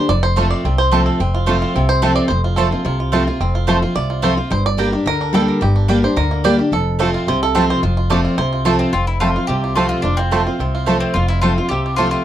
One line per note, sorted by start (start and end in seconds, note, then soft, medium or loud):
0.00 0.10 D4 medium
0.09 0.52 F1 loud
0.09 0.62 F2 medium
0.09 0.24 D5 loud
0.23 0.49 C5 loud
0.36 0.63 F3 medium
0.36 0.46 A3 medium
0.36 0.64 A3 medium
0.36 0.64 C4 medium
0.36 0.46 F4 medium
0.36 1.34 F4 medium
0.36 0.65 F4 medium
0.36 0.46 C5 loud
0.36 0.46 A5 medium
0.51 0.78 D5 loud
0.65 1.07 C2 medium
0.65 1.18 C3 medium
0.65 0.92 C4 medium
0.78 1.05 C5 loud
0.91 1.18 F3 medium
0.91 1.01 A3 medium
0.91 1.19 A3 medium
0.91 1.20 C4 medium
0.91 1.19 C4 loud
0.91 1.01 F4 medium
0.91 1.20 F4 medium
0.91 1.02 C5 medium
0.91 1.02 A5 loud
1.06 1.19 A4 medium
1.20 1.62 F1 medium
1.20 1.73 F2 loud
1.20 1.75 C4 medium
1.34 1.48 F4 medium
1.46 1.73 F3 medium
1.46 1.56 A3 medium
1.46 1.74 A3 medium
1.46 1.74 C4 medium
1.46 1.57 F4 medium
1.46 1.62 F4 medium
1.46 1.74 F4 loud
1.46 1.57 C5 medium
1.46 1.57 A5 loud
1.62 1.88 F4 medium
1.75 2.18 C2 medium
1.75 2.28 C3 medium
1.75 2.03 C4 medium
1.89 2.15 C5 loud
2.02 2.29 F3 medium
2.02 2.12 A3 loud
2.02 2.29 A3 loud
2.02 3.40 C4 medium
2.02 2.30 C4 loud
2.02 2.12 F4 medium
2.02 2.30 F4 loud
2.02 2.12 C5 loud
2.02 2.12 A5 loud
2.16 2.28 D5 loud
2.28 2.72 F1 medium
2.28 2.83 F2 loud
2.28 2.44 C5 medium
2.44 2.71 F4 medium
2.56 2.71 F3 medium
2.56 2.67 A3 medium
2.56 2.72 A3 medium
2.56 2.72 C4 medium
2.56 2.67 F4 loud
2.56 2.70 F4 loud
2.56 3.00 A4 medium
2.56 2.67 C5 loud
2.56 2.67 A5 loud
2.71 2.85 C4 soft
2.71 2.84 F4 medium
2.71 2.85 F4 medium
2.85 3.28 C2 medium
2.85 3.38 C3 medium
2.85 2.99 F4 medium
3.00 3.12 F4 medium
3.12 3.27 F3 medium
3.12 3.22 A3 loud
3.12 3.27 A3 loud
3.12 3.28 C4 medium
3.12 3.22 F4 medium
3.12 3.26 F4 medium
3.12 3.26 F4 loud
3.12 3.22 C5 medium
3.12 3.23 A5 loud
3.27 3.41 C4 soft
3.27 3.40 F4 medium
3.27 3.54 F4 medium
3.40 3.83 F1 medium
3.40 3.94 F2 medium
3.40 3.80 C4 medium
3.55 3.81 F4 medium
3.67 3.82 F3 medium
3.67 3.77 A3 medium
3.67 3.82 A3 medium
3.67 3.83 C4 medium
3.67 3.77 F4 loud
3.67 3.81 F4 medium
3.67 3.77 C5 medium
3.67 3.82 C5 loud
3.67 3.78 A5 loud
3.82 3.96 C4 soft
3.82 3.95 F4 medium
3.82 4.09 F4 medium
3.95 4.38 C2 medium
3.95 4.48 C3 medium
3.95 4.23 D5 loud
4.10 4.36 F4 medium
4.22 4.37 F3 medium
4.22 4.32 A3 loud
4.22 4.38 A3 loud
4.22 4.38 C4 loud
4.22 4.32 F4 medium
4.22 4.36 F4 loud
4.22 4.33 C5 loud
4.22 4.37 C5 loud
4.22 4.33 A5 medium
4.37 4.51 C4 soft
4.37 4.50 F4 medium
4.37 4.51 F4 medium
4.50 4.94 G1 medium
4.50 5.04 G2 medium
4.50 4.65 C5 loud
4.66 4.93 D5 loud
4.77 4.92 G3 medium
4.77 4.88 A#3 medium
4.77 4.92 A#3 medium
4.77 4.93 D4 medium
4.77 4.88 G4 medium
4.77 4.91 G4 medium
4.77 5.06 A#4 medium
4.77 4.88 D5 loud
4.77 4.88 G5 medium
4.92 5.07 D4 soft
4.92 5.06 G4 medium
4.92 5.32 G4 medium
5.06 5.49 D2 medium
5.06 5.59 D3 medium
5.06 5.35 A#4 loud
5.21 5.59 D4 medium
5.33 5.60 G3 loud
5.33 5.60 A#3 medium
5.33 5.43 A#3 medium
5.33 5.60 D4 loud
5.33 5.43 G4 loud
5.33 5.61 G4 loud
5.33 5.62 A4 loud
5.33 5.44 D5 loud
5.33 5.44 G5 medium
5.48 5.87 A#4 medium
5.61 6.04 G1 medium
5.61 6.14 G2 medium
5.61 5.88 G4 medium
5.76 6.14 D4 medium
5.88 6.03 G3 medium
5.88 5.98 A#3 loud
5.88 6.03 A#3 medium
5.88 6.03 D4 loud
5.88 5.98 G4 loud
5.88 6.04 G4 medium
5.88 6.01 G4 medium
5.88 5.99 D5 loud
5.88 5.99 G5 medium
6.02 6.17 D4 soft
6.02 6.16 G4 medium
6.02 6.18 C5 medium
6.16 6.59 D2 medium
6.16 6.69 D3 medium
6.16 6.46 A#4 loud
6.31 6.70 A#3 medium
6.44 6.58 G3 loud
6.44 6.54 A#3 loud
6.44 6.59 A#3 loud
6.44 6.59 D4 loud
6.44 6.54 G4 medium
6.44 6.57 G4 loud
6.44 6.54 D5 loud
6.44 6.59 D5 loud
6.44 6.54 G5 loud
6.58 6.72 D4 soft
6.58 6.71 G4 medium
6.58 6.72 G4 medium
6.72 7.14 F1 medium
6.72 7.25 F2 medium
6.72 6.99 A4 loud
6.99 7.26 F3 medium
6.99 7.09 A3 medium
6.99 7.27 A3 medium
6.99 7.27 C4 loud
6.99 7.09 F4 loud
6.99 7.27 F4 loud
6.99 7.14 A4 medium
6.99 7.09 C5 loud
6.99 7.09 A5 medium
7.14 7.83 F4 medium
7.27 7.70 C2 medium
7.27 7.81 C3 loud
7.27 7.42 C5 loud
7.43 7.70 A4 loud
7.55 7.81 F3 medium
7.55 7.64 A3 medium
7.55 7.82 A3 loud
7.55 7.94 C4 medium
7.55 7.82 C4 loud
7.55 7.64 F4 loud
7.55 7.83 F4 loud
7.55 7.64 C5 loud
7.55 7.65 A5 loud
7.70 7.83 C5 loud
7.83 8.25 F1 medium
7.83 8.36 F2 loud
7.83 7.96 F4 medium
7.97 8.23 F4 medium
8.10 8.37 F3 medium
8.10 8.19 A3 medium
8.10 8.37 A3 medium
8.10 8.37 C4 loud
8.10 8.20 F4 loud
8.10 8.38 F4 medium
8.10 8.20 C5 medium
8.10 8.38 D5 loud
8.10 8.20 A5 loud
8.25 8.51 F4 medium
8.38 8.80 C2 medium
8.38 8.91 C3 loud
8.38 8.65 C5 loud
8.53 8.79 F4 medium
8.65 8.92 F3 medium
8.65 8.75 A3 medium
8.65 8.92 A3 medium
8.65 8.92 C4 loud
8.65 8.75 F4 loud
8.65 8.93 F4 loud
8.65 8.92 A4 medium
8.65 8.75 C5 loud
8.65 8.75 A5 loud
8.79 8.92 C4 medium
8.79 8.94 F4 medium
8.93 9.36 F1 medium
8.93 9.46 F2 medium
8.93 9.21 C4 medium
8.93 9.07 F4 medium
9.07 9.20 E4 medium
9.20 9.35 F3 medium
9.20 9.30 A3 medium
9.20 9.35 A3 medium
9.20 9.77 C4 medium
9.20 9.36 C4 medium
9.20 9.47 F4 medium
9.20 9.30 F4 medium
9.20 9.35 F4 medium
9.20 9.30 C5 medium
9.20 9.30 A5 loud
9.36 9.49 C4 soft
9.36 9.48 F4 medium
9.36 9.49 F4 medium
9.47 9.91 C2 medium
9.47 10.02 C3 medium
9.47 9.63 F4 medium
9.47 9.75 G4 loud
9.64 9.91 F4 medium
9.75 10.03 F3 medium
9.75 9.85 A3 medium
9.75 10.03 A3 medium
9.75 10.32 C4 medium
9.75 10.03 C4 loud
9.75 9.88 F4 medium
9.75 9.86 F4 medium
9.75 10.04 F4 loud
9.75 9.86 C5 medium
9.75 9.86 A5 loud
9.89 10.02 F4 medium
9.89 10.05 F4 medium
10.02 10.47 F1 medium
10.02 10.57 F2 medium
10.02 10.18 D4 medium
10.02 10.19 F4 medium
10.17 10.97 C4 medium
10.17 10.47 F4 medium
10.31 10.46 F3 medium
10.31 10.41 A3 medium
10.31 10.46 A3 medium
10.31 10.60 C4 medium
10.31 10.46 C4 medium
10.31 10.41 F4 loud
10.31 10.45 F4 loud
10.31 10.41 C5 medium
10.31 10.41 A5 loud
10.46 10.60 C4 soft
10.46 10.59 F4 medium
10.46 10.75 F4 medium
10.59 11.02 C2 medium
10.59 11.13 C3 medium
10.59 11.02 C4 medium
10.75 10.87 F4 medium
10.86 11.14 F3 loud
10.86 10.96 A3 medium
10.86 11.14 A3 loud
10.86 11.14 C4 medium
10.86 10.96 F4 loud
10.86 11.16 F4 medium
10.86 11.15 F4 loud
10.86 10.96 C5 medium
10.86 10.96 A5 medium
11.00 11.15 C4 medium
11.00 11.40 C4 medium
11.14 11.57 F1 medium
11.14 11.68 F2 medium
11.14 11.28 F4 medium
11.14 11.29 F4 medium
11.28 11.41 E4 medium
11.28 11.57 F4 medium
11.41 11.57 F3 medium
11.41 11.52 A3 medium
11.41 11.57 A3 loud
11.41 11.70 C4 medium
11.41 11.57 C4 medium
11.41 11.68 F4 medium
11.41 11.52 F4 medium
11.41 11.56 F4 medium
11.41 11.52 C5 medium
11.41 11.52 A5 medium
11.58 11.71 C4 soft
11.58 11.70 F4 medium
11.58 11.85 F4 medium
11.69 12.13 C2 medium
11.69 12.24 C3 medium
11.69 12.10 C4 medium
11.69 11.95 G4 medium
11.86 11.98 F4 medium
11.96 12.24 F3 medium
11.96 12.07 A3 medium
11.96 12.24 A3 loud
11.96 12.24 C4 medium
11.96 12.10 F4 medium
11.96 12.07 F4 medium
11.96 12.24 F4 medium
11.96 12.24 F4 loud
11.96 12.07 C5 medium
11.96 12.07 A5 medium
12.11 12.24 C4 medium
12.11 12.24 F4 medium